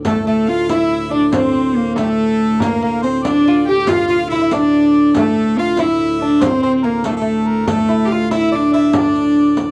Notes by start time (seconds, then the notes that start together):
0.04 D2 A2 A3 A4, riq, frame drum
0.25 A3 A4, frame drum
0.48 F4 F5, frame drum
0.69 E4 E5, riq, frame drum
0.91 frame drum
1.11 D4 D5
1.28 D5
1.33 C4 C5, riq, frame drum
1.54 frame drum
1.76 A#3, frame drum
1.96 A3 A4, riq, frame drum
2.03 G4
2.10 A4
2.18 frame drum
2.60 A#3 A#4, riq, frame drum
2.82 A#3 A#4, frame drum
3.03 C4 C5
3.23 D4 D5, riq, frame drum
3.45 F4, frame drum
3.67 G4 G5
3.86 F4 F5, riq, frame drum
4.08 F4 F5, riq
4.30 E4 E5, frame drum
4.36 E4
4.42 E4
4.51 D4 D5, riq, frame drum
4.94 riq, frame drum
5.14 D2 A2 A3 A4, riq, frame drum
5.37 frame drum
5.58 F4 F5, frame drum
5.77 E4 E5, riq, frame drum
6.01 frame drum
6.22 D4
6.41 C4 C5, riq, frame drum
6.63 C4 C5, frame drum
6.83 A#3 A#4, frame drum
7.04 A3 A4, riq, frame drum
7.11 A#3
7.17 A3 A4
7.21 A3
7.27 frame drum
7.47 A#4
7.67 A3 A4, riq, frame drum
7.89 E4, frame drum
8.05 G4
8.10 F4 F5, frame drum
8.31 E4 E5, riq, frame drum
8.52 D4 D5, frame drum
8.73 E4 E5
8.93 D4 D5, riq, frame drum
9.16 riq
9.36 frame drum
9.57 riq, frame drum